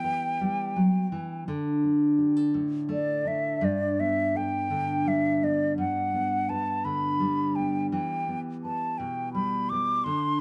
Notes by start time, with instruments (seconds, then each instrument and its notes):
Already playing: nylon-string guitar E3 G3 B3, flute G5
0.04 nylon-string guitar B4
0.41 nylon-string guitar G3
0.76 nylon-string guitar F#3
1.12 nylon-string guitar E3
1.48 nylon-string guitar D3
1.84 nylon-string guitar D4
2.18 nylon-string guitar G4
2.37 nylon-string guitar A4
2.54 nylon-string guitar A2
2.89 nylon-string guitar A3, flute D5
3.25 nylon-string guitar D4, flute E5
3.61 nylon-string guitar G2, flute D5
3.99 nylon-string guitar B3, flute E5
4.35 nylon-string guitar A4, flute G5
4.70 nylon-string guitar D3
5.05 nylon-string guitar G3, flute E5
5.42 nylon-string guitar B3, flute D5
5.78 nylon-string guitar G2, flute F#5
6.14 nylon-string guitar B3
6.49 nylon-string guitar B4, flute A5
6.85 nylon-string guitar D3, flute B5
7.20 nylon-string guitar G3
7.55 nylon-string guitar B3, flute G5
7.92 nylon-string guitar E3, flute G5
8.28 nylon-string guitar B3
8.63 nylon-string guitar B4, flute A5
8.98 nylon-string guitar B2, flute G5
9.34 nylon-string guitar G3, flute B5
9.70 nylon-string guitar B3, flute D6
10.04 nylon-string guitar D3, flute C6